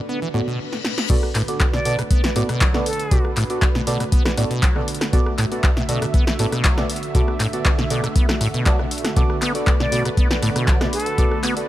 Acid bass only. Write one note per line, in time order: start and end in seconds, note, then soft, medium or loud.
0.09 0.20 B3 medium
0.22 0.29 E3 medium
0.34 0.41 A2 loud
0.47 0.59 B2 medium
1.10 1.17 B2 medium
1.35 1.42 A2 loud
1.73 1.80 B2 medium
1.85 1.96 B2 medium
1.99 2.03 B2 medium
2.11 2.22 B3 medium
2.24 2.30 E3 medium
2.36 2.43 A2 loud
2.49 2.63 B2 medium
2.61 2.76 F#3 loud
2.74 2.81 B2 medium
3.11 3.19 B2 medium
3.37 3.44 A2 loud
3.75 3.82 B2 medium
3.87 3.98 B2 medium
4.00 4.04 B2 medium
4.12 4.23 B3 medium
4.26 4.32 E3 medium
4.37 4.45 A2 loud
4.51 4.64 B2 medium
4.63 4.77 F#3 loud
4.76 4.83 B2 medium
5.13 5.20 B2 medium
5.38 5.46 A2 loud
5.77 5.83 B2 medium
5.89 6.00 B2 medium
6.02 6.06 B2 medium
6.14 6.25 B3 medium
6.27 6.34 E3 medium
6.39 6.46 A2 loud
6.52 6.66 B2 medium
6.64 6.79 F#3 loud
6.78 6.84 B2 medium
7.15 7.22 B2 medium
7.40 7.47 A2 loud
7.79 7.85 B2 medium
7.90 8.01 B2 medium
8.04 8.08 B2 medium
8.16 8.27 B3 medium
8.29 8.35 E3 medium
8.41 8.48 A2 loud
8.54 8.67 B2 medium
8.66 8.81 F#3 loud
8.79 8.86 B2 medium
9.16 9.24 B2 medium
9.42 9.53 B3 loud
9.80 9.87 B2 medium
9.92 10.03 B2 medium
10.05 10.09 B2 medium
10.17 10.28 B3 medium
10.31 10.37 E3 medium
10.42 10.50 A2 loud
10.56 10.69 B2 medium
10.68 10.83 F#3 loud
10.81 10.88 B2 medium
11.18 11.25 B2 medium
11.43 11.54 B3 loud